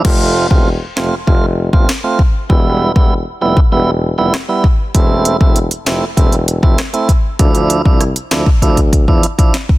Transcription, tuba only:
\new Staff \with { instrumentName = "Tuba" } { \clef bass \time 4/4 \key f \lydian \tempo 4 = 98 f,,8. e,,8 r16 f,,16 r16 f,,8. g,,16 r4 | e,,8. e,,8 r16 f,,16 r16 e,,8. f,,16 r4 | e,,8. e,,8 r16 f,,16 r16 e,,8. f,,16 r4 | d,8. c,8 r16 d,16 r16 d,8. e,16 r4 | }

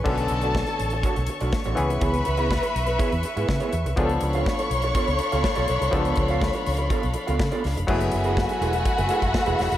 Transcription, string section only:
\new Staff \with { instrumentName = "String section" } { \time 4/4 \key fis \minor \tempo 4 = 123 << { cis'''1~ | cis'''1 | <a' b''>1~ | <a' b''>1 |
<a b''>1 | } \\ { <a' cis''>2.~ <a' cis''>8 <b' e''>8~ | <b' e''>1 | <d' eis''>1~ | <d' eis''>1 |
<e'' gis''>1 | } >> }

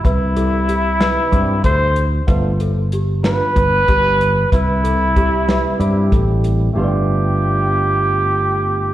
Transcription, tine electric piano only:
\new Staff \with { instrumentName = "Tine electric piano" } { \time 7/8 \key g \mixolydian \tempo 4 = 94 r8 <g c' e' g'>4. <g c' e' g'>8 r4 | <a b d' f'>8 r4 <a b d' f'>8 r4. | r4 <g c' e' g'>4 <g c' e' g'>4. | <a b d' f'>2.~ <a b d' f'>8 | }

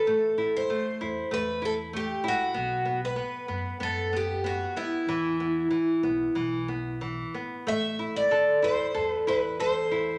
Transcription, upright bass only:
\new Staff \with { instrumentName = "Upright bass" } { \clef bass \time 4/4 \key e \minor \tempo 4 = 95 a,,4. e,8 e,2 | b,,4. fis,8 fis,2 | e,4. b,,8 b,,2 | \key a \minor a,,4. e,8 e,2 | }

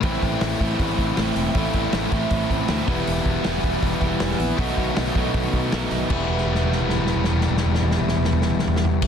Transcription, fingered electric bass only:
\new Staff \with { instrumentName = "Fingered electric bass" } { \clef bass \time 4/4 \key e \minor \tempo 4 = 159 a,,8 a,,8 a,,8 a,,8 a,,8 a,,8 a,,8 e,,8 | a,,8 a,,8 a,,8 a,,8 a,,8 a,,8 d,8 e,,8 | e,,8 e,,8 e,,8 e,,8 e,,8 e,,8 e,,8 ais,,8 | b,,8 b,,8 b,,8 b,,8 b,,8 b,,8 b,,8 b,,8 |
e,,1~ | e,,1 | }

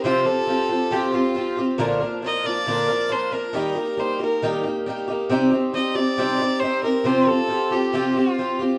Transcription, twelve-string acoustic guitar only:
\new Staff \with { instrumentName = "Twelve-string acoustic guitar" } { \time 4/4 \key f \mixolydian \tempo 4 = 137 <c f c' f' g'>8 <c' f' g'>8 <f c' f' g'>8 <c' f' g'>8 <c f c' f' g'>8 <c' f' g'>8 <f c' f' g'>8 <c' f' g'>8 | <bes, d f bes d' bes'>8 <f bes d' bes'>8 <f bes d' bes'>8 <f bes d' bes'>8 <bes, d f bes d' bes'>8 <f bes d' bes'>8 <f bes d' bes'>8 <f bes d' bes'>8 | <ees g bes ees' g'>8 <bes ees' g'>8 <g bes ees' g'>8 <bes ees' g'>8 <ees g bes ees' g'>8 <bes ees' g'>8 <g bes ees' g'>8 <bes ees' g'>8 | <c g c' ees' g'>8 <c' ees' g'>8 <g c' ees' g'>8 <c' ees' g'>8 <c g c' ees' g'>8 <c' ees' g'>8 <g c' ees' g'>8 <c' ees' g'>8 |
<c f c' f' g'>8 <f' g'>8 <f c' f' g'>8 <c' f' g'>8 <c f c' f' g'>8 <c' f' g'>8 <f c' f' g'>8 <c' f' g'>8 | }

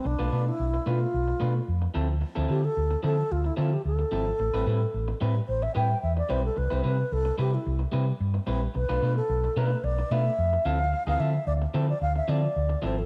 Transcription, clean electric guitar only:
\new Staff \with { instrumentName = "Clean electric guitar" } { \time 4/4 \key d \dorian \tempo 4 = 110 r16 <a d' f' b'>16 <a d' f' b'>16 r8. <a d' f' b'>16 r8. <a d' f' b'>16 r8. <f c' e' a'>16 r16 | r16 <f c' e' a'>16 <f c' e' a'>16 r8. <f c' e' a'>16 r8. <f c' e' a'>16 r8. <f c' e' a'>16 r16 | r16 <g c' e' b'>16 <g c' e' b'>16 r8. <g c' e' b'>16 r8. <g c' e' b'>16 r8. <g c' e' b'>16 r16 | r16 <g c' e' b'>16 <g c' e' b'>16 r8. <g c' e' b'>16 r8. <g c' e' b'>16 r8. <g c' e' b'>16 r16 |
r16 <a d' f' b'>16 <a d' f' b'>16 r8. <a d' f' b'>16 r8. <a d' f' b'>16 r8. <f c' e' a'>16 r16 | r16 <f c' e' a'>16 <f c' e' a'>16 r8. <f c' e' a'>16 r8. <f c' e' a'>16 r8. <f c' e' a'>16 r16 | }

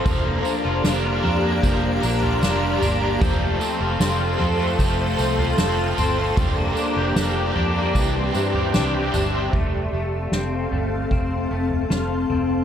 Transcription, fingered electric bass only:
\new Staff \with { instrumentName = "Fingered electric bass" } { \clef bass \time 4/4 \key f \major \tempo 4 = 76 f,,8 r16 f,,16 f,,8 f,8 f,,8 bes,,8 f,,8 g,,8 | f,,8 r16 f,,16 f,,8 f,8 f,,8 c,8 f,,8 g,,8 | f,,8 r16 f,,16 f,,8 f,8 c,8 g,8 c,8 g,,8 | f,,8 f,,8 f,,8 g,,8 f,,8 f,,8 f,,8 f,,8 | }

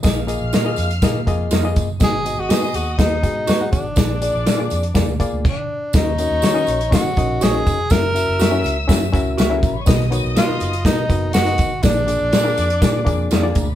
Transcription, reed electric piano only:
<<
  \new Staff \with { instrumentName = "Reed electric piano" } { \time 4/4 \key ees \minor \tempo 4 = 122 <bes f' aes' ees''>16 r16 <bes f' aes' ees''>8 r16 <bes f' aes' ees''>8 r16 <bes f' aes' ees''>16 r16 <bes f' aes' ees''>8 r16 <bes f' aes' ees''>8 r16 | <ces' ges' aes' ees''>16 r16 <ces' ges' aes' ees''>8 r16 <ces' ges' aes' ees''>8 r16 <ces' ges' aes' ees''>16 r16 <ces' ges' aes' ees''>8 r16 <ces' ges' aes' ges''>8 r16 | <bes f' aes' d''>16 r16 <bes f' aes' d''>8 r16 <bes f' aes' d''>8 r16 <bes f' aes' d''>16 r16 <bes f' aes' d''>8 r4 | <des' ees' ges' bes' ees''>16 r16 <des' ees' ges' bes' ees''>8 r16 <des' ees' ges' bes' ees''>8 r16 <des' ees' ges' bes' ees''>16 r16 <des' ees' ges' bes' ees''>8 r16 <des' ees' ges' bes' ees''>8 r16 |
<des' fes' ges' bes' fes''>16 r16 <des' fes' ges' bes' fes''>8 r16 <des' fes' ges' bes' fes''>8 r16 <des' fes' ges' bes' fes''>16 r16 <des' fes' ges' bes' fes''>8 r16 <des' fes' ges' bes' fes''>8 r16 | <b dis' fis' ais' dis''>16 r16 <b dis' fis' ais' des''>8 r16 <b dis' fis' ais' dis''>8 r16 <b dis' fis' ais' dis''>16 r16 <b dis' fis' ais' dis''>8 r16 <b dis' fis' ais' dis''>8 r16 | <bes d' f' aes' d''>16 r16 <bes d' f' aes' d''>8 r16 <bes d' f' aes' bes'>8 r16 <bes d' f' aes' d''>16 r16 <bes d' f' aes' d''>8 r16 <bes d' f' aes' d''>8 r16 | }
  \new Staff \with { instrumentName = "Reed electric piano" } { \clef bass \time 4/4 \key ees \minor bes,4. r2 r8 | aes,4. r2 r8 | bes,4. r2 r8 | ees4. r2 r8 |
r1 | b,4. r2 r8 | bes,4. r2 r8 | }
>>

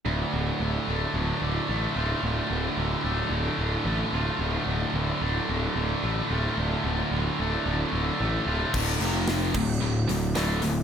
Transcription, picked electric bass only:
\new Staff \with { instrumentName = "Picked electric bass" } { \clef bass \time 4/4 \key d \minor \tempo 4 = 111 d,,8 d,,8 d,,8 d,,8 d,,8 d,,8 a,,8 d,,8 | d,,8 d,,8 d,,8 d,,8 d,,8 d,,8 a,,8 d,,8 | d,,8 d,,8 d,,8 d,,8 d,,8 d,,8 a,,8 d,,8 | d,,8 d,,8 d,,8 d,,8 d,,8 d,,8 a,,8 d,,8 |
d,,8 f,,4 d,,8 d,,8 d,,8 d,,8 d,,8 | }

